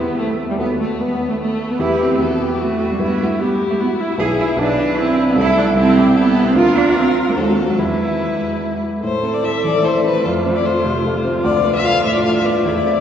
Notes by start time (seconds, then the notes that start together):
Already playing: E2 B3 E4 G4
0.19 A3
0.50 G3
0.58 D#2 B3 F#4 A4
0.80 A3
1.00 B3
1.29 A3
1.40 A3
1.71 B3
1.79 E2 B3 E4 G4 B4
2.01 C4
2.18 E2 B3 E4 F#4 G4
2.23 A4
2.42 G4
2.61 A3 F#4
2.91 G3
2.99 G2 B3 E4 G4
3.21 A3
3.40 B3 E4 G4
3.70 A3
3.80 B3 F#4
4.01 E4
4.18 B1 B3 E4 G#4
4.40 E4
4.57 B1 B3 D4 E4 G#4 B4
4.79 D4
4.97 C4 E4
5.29 B3
5.36 C2 A3 E4 A4
5.58 D4
5.75 C2 A3 C4 E4 A4
5.97 G4
6.16 B3 E4 A4
6.48 C4
6.55 D2 D4 F4 A#4
6.78 D4
6.98 C4
7.29 A#3
7.36 D#2 G#3 C4 F#4 A4
7.70 F#3
7.78 E2 G#3 B3 E4 B4
9.03 A2 A3 A4 C5
9.23 C4
9.34 D5
9.43 E4 A4 E5
9.64 E3 D5
9.84 E4 A4 C5
10.04 C4 B4
10.25 F2 F4 A4
10.46 C4
10.55 D5
10.65 F4 A4 C5
10.85 C3
11.05 F4 A4
11.25 C4
11.44 D2 A3 D5
11.64 B3
11.76 E5
11.84 F4 A4 F5
12.04 A2 E5
12.15 D5
12.24 F4 A4 F5
12.36 E5
12.44 B3 D5
12.64 E2 E4 D5
12.85 C4